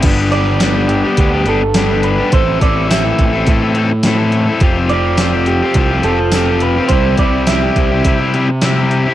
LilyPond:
<<
  \new Staff \with { instrumentName = "Clean electric guitar" } { \time 4/4 \key g \mixolydian \tempo 4 = 105 r8 d''4 g'4 a'4 b'8 | c''8 d''8 e''2~ e''8 r8 | r8 d''4 g'4 a'4 b'8 | c''8 d''8 e''2~ e''8 r8 | }
  \new Staff \with { instrumentName = "Overdriven electric guitar" } { \time 4/4 \key g \mixolydian <g, d g b d' g'>8 <g b d' g'>8 <g, d g b d' g'>16 <g b d' g'>8 <g b d' g'>16 <g b d' g'>16 <g b d' g'>16 <g b d' g'>8 <g, d g b d' g'>16 <g b d' g'>8 <g b d' g'>16 | <a, e c' e' a'>8 <e c' e' a'>8 <a, e c' e' a'>16 <c' e' a'>8 <c' e' a'>16 <e c' e' a'>16 <c' e' a'>16 <e c' e' a'>8 <a, e c' e' a'>16 <c' e' a'>8 <c' e' a'>16 | <f c' f' g'>8 <f c' f' g'>8 <f c' f' g'>16 <c' f' g'>8 <c' f' g'>16 <f c' f' g'>16 <c' f' g'>16 <f c' f' g'>8 <f c' f' g'>16 <c' f' g'>8 <c' f' g'>16 | <c g c' e' g'>8 <g c' e' g'>8 <c g c' e' g'>16 <c' e' g'>8 <c' e' g'>16 <g c' e' g'>16 <c' e' g'>16 <g c' e' g'>8 <c g c' e' g'>16 <c' e' g'>8 <c' e' g'>16 | }
  \new Staff \with { instrumentName = "Picked electric bass" } { \clef bass \time 4/4 \key g \mixolydian g,,2 d,8 g,,4. | a,,8 a,,4 a,,8 a,2 | f,,2 c,8 f,,4. | c,8 c,4 c,8 c2 | }
  \new DrumStaff \with { instrumentName = "Drums" } \drummode { \time 4/4 <cymc hh bd>8 hh8 <hh sn tamb>8 hh8 <hh bd>8 hh8 <hh sn tamb>8 hh8 | <hh bd>8 <hh bd>8 <hh sn tamb>8 <hh bd>8 <hh bd>8 hh8 <hh sn tamb>8 <hh sn>8 | <hh bd>8 hh8 <hh sn tamb>8 hh8 <hh bd>8 hh8 <hh sn tamb>8 hh8 | <hh bd>8 <hh bd>8 <hh sn tamb>8 <hh bd>8 <hh bd>8 hh8 <hh sn tamb>8 hh8 | }
>>